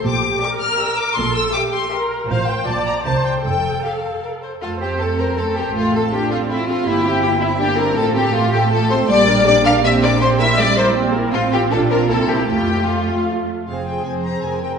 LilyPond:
<<
  \new Staff \with { instrumentName = "Violin section" } { \time 3/4 \key f \major \tempo 4 = 159 d'''4 d'''8 f'''8 e'''8 d'''8 | c'''8 e'''8 d'''8 c'''8 r4 | f''8 g''8 a''8 bes''8 a''8 g''8 | g''4 f''4 r4 |
f''8 g''8 a''8 bes''8 a''8 g''8 | f''8 a''8 g''8 f''8 e''8 f''8 | e''8 g''8 g''8 e''8 g''8 bes''8 | a''8 g''8 f''8 g''8 a''8 c'''8 |
d'''4 d'''8 f'''8 e'''8 d'''8 | c'''8 e'''8 d'''8 c'''8 r4 | f''8 g''8 a''8 bes''8 a''8 g''8 | g''4 f''4 r4 |
\key f \minor f''8 g''8 aes''8 bes''8 aes''8 g''8 | }
  \new Staff \with { instrumentName = "Violin section" } { \time 3/4 \key f \major r4 <g' d''>4 <g' d''>4 | r4 <g' e''>4 <g' e''>4 | <f' c''>4 <f' d''>4 <e' bes'>4 | r4 g'8 a'8 bes'8 c''8 |
f'8 g'8 a'8 bes'8 a'8 g'8 | f'8 a'8 g'8 f'8 e'8 f'8 | e'8 g'8 g'8 e'8 g'8 bes'8 | a'8 g'8 f'8 g'8 a'8 c''8 |
d''4 d''8 f''8 e''8 d''8 | c''8 e''8 d''8 c''8 r4 | f'8 g'8 a'8 bes'8 a'8 g'8 | g'4 f'4 r4 |
\key f \minor aes'4 c''4 bes'4 | }
  \new Staff \with { instrumentName = "Viola section" } { \time 3/4 \key f \major << { g'4 bes'2 | a'4 g'4 bes'4 | c''4 d''4 c''4 | a'2~ a'8 r8 |
a'8 c''8 a'8 c''8 a'8 c''8 | f'8 a'8 f'8 a'8 f'8 a'8 | g'8 e'8 g'8 e'8 g'8 e'8 | f'8 a'8 f'8 a'8 f'8 a'8 |
g'8 bes'8 g'8 bes'8 g'8 bes'8 | g'8 bes'8 g'8 bes'8 g'8 bes'8 | f'4 f'4 e'4 | f'4 f'4. r8 |
\key f \minor aes'8 aes'8 aes'8 aes'8 aes'8 aes'8 | } \\ { r2. | r2. | r2. | r2. |
a8 c'8 a8 c'8 a8 c'8 | a8 c'8 a8 c'8 a8 c'8 | bes8 c'8 bes8 c'8 bes8 c'8 | a8 c'8 a8 c'8 a8 c'8 |
bes8 d'8 bes8 d'8 bes8 d'8 | c'8 e'8 c'8 e'8 c'8 e'8 | c'4 d'8 c'8 bes4 | a4 a4. r8 |
c'8 c'8 c'8 c'8 c'8 c'8 | } >> }
  \new Staff \with { instrumentName = "Cello section" } { \time 3/4 \key f \major bes,4 r2 | bes,4 r2 | a,4 bes,4 c4 | f,4 r2 |
r4 c'2 | a4 d'4 c'4 | e'2 d'4 | c'4 a2 |
g4 d'4 c'4 | bes4 g4 bes4 | c'4 d'4 c'4 | a2~ a8 r8 |
\key f \minor f,4 f,4 f,4 | }
  \new Staff \with { instrumentName = "Double bass section" } { \clef bass \time 3/4 \key f \major bes,,4 r2 | bes,,4 r2 | a,,4 bes,,4 c,4 | f,,4 r2 |
f,2. | a,,2. | g,,2. | a,,2. |
bes,,2.~ | bes,,2. | a,,4 bes,,4 c,4 | f,2~ f,8 r8 |
\key f \minor f,,4 f,,4 f,,4 | }
>>